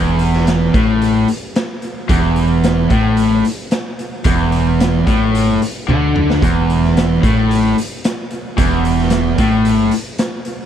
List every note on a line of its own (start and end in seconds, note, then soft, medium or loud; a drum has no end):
0.00 0.70 E1 medium
0.00 0.73 E2 medium
0.19 closed hi-hat medium
0.33 snare soft
0.47 snare loud
0.47 closed hi-hat medium
0.73 1.24 A1 medium
0.73 1.27 A2 medium
0.73 kick loud
0.73 closed hi-hat medium
1.02 closed hi-hat medium
1.28 closed hi-hat soft
1.56 snare loud
1.56 closed hi-hat medium
1.82 closed hi-hat medium
2.09 2.87 E1 medium
2.09 2.90 E2 loud
2.09 kick loud
2.09 closed hi-hat medium
2.36 closed hi-hat medium
2.64 snare loud
2.64 closed hi-hat medium
2.90 3.41 A1 medium
2.90 3.43 A2 medium
2.90 kick medium
2.90 closed hi-hat medium
3.17 closed hi-hat medium
3.45 closed hi-hat medium
3.71 snare loud
3.71 closed hi-hat medium
3.99 closed hi-hat medium
4.24 5.02 E1 medium
4.24 5.06 E2 loud
4.24 kick medium
4.24 closed hi-hat medium
4.52 closed hi-hat medium
4.80 snare loud
4.80 closed hi-hat medium
5.07 5.57 A1 medium
5.07 5.60 A2 medium
5.07 kick medium
5.07 closed hi-hat medium
5.35 closed hi-hat medium
5.62 closed hi-hat medium
5.88 6.38 D2 medium
5.88 6.41 D3 medium
5.88 high tom medium
6.16 mid tom medium
6.30 snare medium
6.42 7.19 E1 medium
6.42 7.22 E2 medium
6.42 kick medium
6.42 closed hi-hat medium
6.70 closed hi-hat medium
6.84 snare soft
6.97 snare loud
6.97 closed hi-hat medium
7.22 7.73 A1 medium
7.22 7.75 A2 medium
7.22 kick medium
7.22 closed hi-hat medium
7.51 closed hi-hat medium
7.78 closed hi-hat medium
8.04 snare loud
8.04 closed hi-hat medium
8.31 closed hi-hat medium
8.58 9.35 E1 medium
8.58 9.38 E2 medium
8.58 kick loud
8.58 closed hi-hat medium
8.85 closed hi-hat medium
8.99 snare soft
9.10 snare loud
9.10 closed hi-hat medium
9.38 9.89 A1 medium
9.38 9.92 A2 medium
9.38 kick loud
9.38 closed hi-hat medium
9.65 closed hi-hat medium
9.91 closed hi-hat medium
10.18 snare loud
10.18 closed hi-hat medium
10.45 closed hi-hat medium